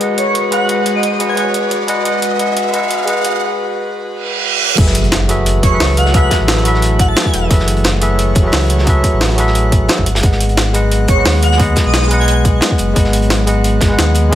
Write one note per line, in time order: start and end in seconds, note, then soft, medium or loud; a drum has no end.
0.00 0.51 G#3 medium
0.00 4.74 G#3 medium
0.00 4.74 F#4 medium
0.00 0.51 G#4 medium
0.00 0.52 B4 medium
0.00 4.74 B4 medium
0.00 0.02 D#5 medium
0.00 0.51 D#5 medium
0.00 0.04 F#5 medium
0.00 0.51 F#5 medium
0.00 closed hi-hat medium
0.00 riser medium
0.18 0.38 C#5 medium
0.18 closed hi-hat medium
0.35 0.84 D#2 medium
0.35 closed hi-hat medium
0.51 0.65 G#3 medium
0.51 0.66 G#4 medium
0.51 0.68 B4 medium
0.51 0.68 D#5 medium
0.51 0.67 F#5 medium
0.51 0.68 F#5 loud
0.51 closed hi-hat medium
0.66 1.17 G#3 medium
0.66 1.17 G#4 medium
0.66 1.18 B4 medium
0.66 closed hi-hat medium
0.70 1.19 D#5 medium
0.70 1.20 F#5 medium
0.86 closed hi-hat medium
0.95 1.27 D#5 loud
1.03 closed hi-hat medium
1.19 1.33 G#3 medium
1.19 1.35 G#4 medium
1.19 1.36 B4 medium
1.19 1.36 D#5 medium
1.19 1.36 F#5 medium
1.19 closed hi-hat medium
1.29 1.34 G#5 medium
1.34 1.85 G#3 medium
1.34 1.86 G#4 medium
1.34 1.86 B4 medium
1.34 1.43 G#5 medium
1.34 closed hi-hat medium
1.38 1.87 D#5 medium
1.38 1.88 F#5 medium
1.54 closed hi-hat medium
1.71 closed hi-hat medium
1.87 2.01 G#3 medium
1.87 2.03 G#4 medium
1.87 2.04 B4 medium
1.87 2.04 D#5 medium
1.87 2.05 F#5 loud
1.87 closed hi-hat medium
2.02 2.36 G#3 medium
2.02 2.37 G#4 medium
2.02 2.38 B4 medium
2.02 closed hi-hat medium
2.07 2.39 D#5 medium
2.07 2.39 F#5 medium
2.22 closed hi-hat medium
2.37 2.70 G#3 medium
2.37 2.71 G#4 medium
2.37 2.72 B4 medium
2.37 closed hi-hat medium
2.41 2.73 D#5 medium
2.41 2.74 F#5 medium
2.57 closed hi-hat medium
2.71 3.04 G#3 medium
2.71 3.05 G#4 medium
2.71 3.06 B4 medium
2.71 3.07 D#5 medium
2.71 closed hi-hat medium
2.76 3.08 F#5 medium
2.91 closed hi-hat medium
3.05 3.42 D#2 medium
3.05 3.39 G#3 medium
3.05 3.40 G#4 medium
3.05 3.40 B4 medium
3.05 closed hi-hat medium
3.09 3.41 D#5 medium
3.09 3.42 F#5 medium
3.25 closed hi-hat medium
4.10 reverse cymbal medium
4.75 5.62 F#1 loud
4.75 10.02 E3 medium
4.75 5.26 F#3 medium
4.75 10.02 A3 medium
4.75 5.26 F#4 medium
4.75 5.27 G#4 medium
4.75 5.27 A4 medium
4.75 7.48 B4 medium
4.75 14.35 F#5 medium
4.75 kick loud
4.75 closed hi-hat medium
4.75 crash loud
4.75 impact medium
4.80 5.28 B4 medium
4.80 5.29 E5 medium
4.86 snare soft
4.95 closed hi-hat loud
4.95 closed hi-hat medium
5.04 closed hi-hat soft
5.12 snare loud
5.12 closed hi-hat medium
5.28 5.44 F#3 medium
5.28 5.44 F#4 medium
5.28 5.45 G#4 medium
5.28 5.45 A4 medium
5.28 5.45 B4 medium
5.28 5.46 E5 loud
5.28 closed hi-hat loud
5.28 closed hi-hat medium
5.46 closed hi-hat medium
5.63 5.79 F#1 loud
5.63 5.84 C#5 medium
5.63 kick loud
5.63 closed hi-hat medium
5.70 6.10 F#3 medium
5.70 6.12 F#4 medium
5.70 6.12 G#4 medium
5.70 6.13 A4 medium
5.74 6.13 B4 medium
5.74 6.14 E5 medium
5.80 6.30 C#2 medium
5.80 snare loud
5.80 closed hi-hat medium
5.80 open hi-hat medium
5.97 6.13 F#5 loud
5.97 closed hi-hat medium
6.06 snare medium
6.12 6.61 F#3 loud
6.12 6.62 F#4 medium
6.12 6.63 G#4 medium
6.12 6.64 A4 medium
6.12 6.35 F#5 medium
6.12 kick loud
6.12 closed hi-hat medium
6.16 6.64 B4 medium
6.16 6.65 E5 loud
6.31 kick medium
6.31 snare loud
6.31 closed hi-hat loud
6.31 closed hi-hat medium
6.40 7.15 A1 loud
6.48 snare loud
6.48 closed hi-hat medium
6.57 snare soft
6.62 7.47 F#3 loud
6.62 7.48 E4 loud
6.62 7.48 F#4 loud
6.62 7.49 A4 medium
6.62 closed hi-hat loud
6.62 closed hi-hat medium
6.67 7.49 B4 medium
6.67 7.50 E5 loud
6.74 snare soft
6.82 closed hi-hat medium
6.99 7.07 F#5 medium
6.99 kick loud
6.99 closed hi-hat medium
7.09 7.43 A5 loud
7.17 snare loud
7.17 closed hi-hat medium
7.25 kick medium
7.34 7.49 E1 medium
7.34 closed hi-hat loud
7.34 closed hi-hat medium
7.48 8.35 F#1 loud
7.48 7.99 F#3 medium
7.48 7.99 F#4 medium
7.48 8.00 G#4 medium
7.48 8.00 A4 medium
7.48 10.04 C#5 medium
7.48 kick loud
7.48 closed hi-hat medium
7.52 8.01 B4 medium
7.52 8.01 E5 medium
7.59 snare soft
7.68 closed hi-hat loud
7.68 closed hi-hat medium
7.77 closed hi-hat soft
7.84 snare loud
7.84 closed hi-hat medium
8.00 8.17 F#3 medium
8.00 8.17 F#4 medium
8.00 8.17 G#4 medium
8.00 8.18 A4 medium
8.00 8.18 B4 medium
8.00 8.18 E5 loud
8.00 closed hi-hat loud
8.00 closed hi-hat medium
8.19 closed hi-hat medium
8.35 8.51 F#1 loud
8.35 kick loud
8.35 closed hi-hat medium
8.42 8.83 F#3 medium
8.42 8.84 F#4 medium
8.42 8.85 G#4 medium
8.42 8.85 A4 medium
8.46 8.86 B4 medium
8.46 8.86 E5 medium
8.52 9.03 C#2 medium
8.52 snare loud
8.52 closed hi-hat medium
8.52 open hi-hat medium
8.70 closed hi-hat medium
8.79 snare medium
8.84 9.34 F#3 loud
8.84 9.35 F#4 medium
8.84 9.36 G#4 medium
8.84 9.37 A4 medium
8.84 kick loud
8.84 closed hi-hat medium
8.89 9.37 B4 loud
8.89 9.38 E5 loud
9.04 kick medium
9.04 closed hi-hat medium
9.13 9.88 A1 loud
9.21 snare loud
9.21 closed hi-hat medium
9.30 snare soft
9.35 10.04 F#3 loud
9.35 10.04 F#4 loud
9.35 10.05 G#4 medium
9.35 10.06 A4 medium
9.35 closed hi-hat medium
9.40 10.06 B4 medium
9.40 10.07 E5 loud
9.47 snare soft
9.55 closed hi-hat medium
9.72 kick loud
9.72 closed hi-hat medium
9.89 snare loud
9.89 closed hi-hat medium
9.98 10.17 G#1 medium
9.98 kick medium
10.06 14.35 F#3 medium
10.06 14.35 B3 medium
10.06 closed hi-hat medium
10.15 10.23 F#1 medium
10.15 snare loud
10.15 closed hi-hat medium
10.20 11.07 G#1 loud
10.20 10.71 G#3 medium
10.20 10.72 G#4 medium
10.20 10.72 B4 medium
10.20 kick loud
10.20 closed hi-hat medium
10.25 10.73 D#5 medium
10.25 10.74 F#5 medium
10.32 snare soft
10.40 closed hi-hat medium
10.49 closed hi-hat soft
10.57 snare loud
10.57 closed hi-hat medium
10.73 10.89 G#3 medium
10.73 10.90 G#4 medium
10.73 10.90 B4 medium
10.73 10.91 D#5 medium
10.73 10.91 F#5 loud
10.73 closed hi-hat medium
10.91 closed hi-hat medium
11.08 11.24 G#1 medium
11.08 11.29 C#5 medium
11.08 kick loud
11.08 closed hi-hat medium
11.15 11.56 G#3 medium
11.15 11.57 G#4 medium
11.15 11.58 B4 medium
11.19 11.58 D#5 medium
11.19 11.59 F#5 medium
11.25 11.75 D#2 medium
11.25 snare loud
11.25 closed hi-hat medium
11.25 open hi-hat medium
11.43 11.58 F#5 medium
11.43 closed hi-hat medium
11.52 snare medium
11.57 12.07 G#3 loud
11.57 12.08 G#4 medium
11.57 12.09 B4 medium
11.57 kick loud
11.57 closed hi-hat medium
11.61 12.10 D#5 loud
11.61 12.10 F#5 loud
11.76 kick medium
11.76 snare loud
11.76 closed hi-hat medium
11.86 12.61 B1 loud
11.86 12.18 D#5 loud
11.94 snare loud
11.94 closed hi-hat medium
12.03 snare soft
12.08 12.92 G#3 loud
12.08 12.93 G#4 medium
12.08 12.94 B4 medium
12.08 closed hi-hat medium
12.12 12.95 D#5 medium
12.12 12.96 F#5 loud
12.20 12.25 G#5 medium
12.20 snare soft
12.28 12.34 G#5 medium
12.28 closed hi-hat medium
12.28 closed hi-hat loud
12.45 kick loud
12.45 closed hi-hat medium
12.61 snare loud
12.61 closed hi-hat medium
12.71 kick medium
12.78 12.95 F#1 medium
12.78 closed hi-hat medium
12.93 13.80 G#1 loud
12.93 13.44 G#3 medium
12.93 13.45 G#4 medium
12.93 13.45 B4 medium
12.93 kick loud
12.93 closed hi-hat medium
12.98 13.46 D#5 medium
12.98 13.47 F#5 medium
13.04 snare soft
13.13 closed hi-hat loud
13.13 closed hi-hat medium
13.22 closed hi-hat soft
13.30 snare loud
13.30 closed hi-hat loud
13.30 closed hi-hat medium
13.46 13.62 G#3 medium
13.46 13.63 G#4 medium
13.46 13.63 B4 medium
13.46 13.63 D#5 medium
13.46 13.64 F#5 loud
13.46 closed hi-hat medium
13.64 closed hi-hat medium
13.81 13.97 G#1 medium
13.81 kick loud
13.81 snare loud
13.81 closed hi-hat medium
13.88 14.28 G#3 medium
13.88 14.30 G#4 medium
13.88 14.31 B4 medium
13.92 14.31 D#5 medium
13.92 14.32 F#5 medium
13.99 14.35 D#2 medium
13.99 snare loud
13.99 closed hi-hat medium
14.15 closed hi-hat medium
14.30 14.35 G#3 loud
14.30 14.35 G#4 medium